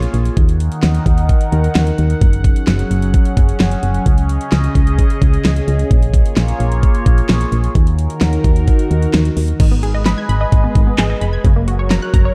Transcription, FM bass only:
0.14 0.30 A#1 loud
0.37 0.69 D#2 loud
0.83 0.99 D#2 loud
1.06 1.30 D#2 loud
1.52 1.68 D#2 loud
1.75 1.92 D#2 loud
1.99 2.15 D#2 loud
2.21 2.54 F#1 loud
2.68 2.84 F#1 loud
2.91 3.15 F#1 loud
3.37 3.53 F#1 loud
3.60 3.76 F#1 medium
3.83 3.99 F#1 loud
4.06 4.38 C#2 loud
4.52 4.68 C#2 loud
4.75 4.99 C#2 loud
5.22 5.38 C#2 medium
5.45 5.61 C#2 loud
5.68 5.84 C#2 loud
5.91 6.23 A#1 loud
6.37 6.53 A#1 loud
6.60 6.84 A#1 loud
7.06 7.22 A#1 loud
7.29 7.45 A#1 loud
7.52 7.68 A#1 loud
7.75 8.08 D#2 loud
8.21 8.38 D#2 loud
8.44 8.69 D#2 loud
8.91 9.07 D#2 medium
9.14 9.30 D#2 medium
9.37 9.53 D#2 loud
9.60 10.15 G#1 loud
10.29 10.45 G#1 loud
10.52 10.68 G#1 loud
10.75 10.91 G#1 loud
10.98 11.14 G#1 loud
11.21 11.38 F1 medium
11.45 11.99 F#1 loud
12.14 12.30 F#1 loud

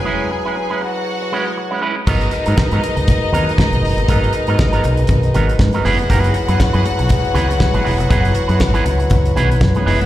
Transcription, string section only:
0.00 0.78 G#4 medium
0.00 0.78 G#5 medium
0.80 1.79 F#4 medium
0.80 1.80 F#5 medium
2.06 5.55 D#4 loud
2.06 5.55 D#5 loud
5.85 9.57 F#4 medium
5.85 9.57 F#5 loud
9.77 9.86 C#4 medium
9.77 9.86 C#5 medium
9.87 9.95 D#4 medium
9.87 9.95 D#5 medium
9.95 10.03 E4 medium
9.95 10.03 E5 medium

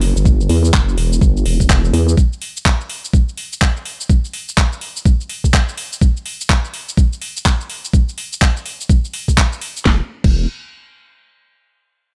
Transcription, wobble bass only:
0.00 0.14 F#1 loud
0.16 0.48 G1 loud
0.49 0.72 E2 medium
0.73 0.96 F#1 loud
0.97 1.20 E1 medium
1.21 1.44 G1 medium
1.45 1.92 E1 medium
1.93 2.16 E2 loud
9.86 10.01 E1 medium
10.24 10.47 E1 loud

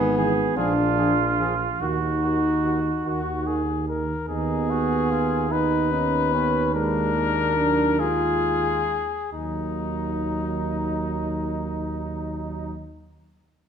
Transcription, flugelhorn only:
0.00 0.17 G#4 medium
0.17 0.57 G#4 medium
0.58 1.83 F4 medium
1.81 3.67 F#4 medium
4.29 4.71 D#4 soft
4.70 5.12 F#4 soft
5.11 5.53 F4 soft
5.51 5.92 D#4 soft
5.92 6.35 D#4 soft
6.34 6.76 C#4 soft
6.74 8.01 D4 soft
7.99 8.97 F4 soft
9.33 12.73 D#4 soft

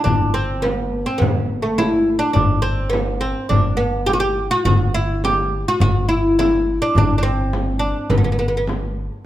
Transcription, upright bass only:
0.05 1.03 G1 medium
1.20 2.17 G1 medium
2.35 3.32 G1 medium
3.50 4.47 G1 medium
4.65 5.62 G1 medium
5.80 6.77 G1 medium
6.95 7.92 G1 medium
8.10 9.07 G1 medium

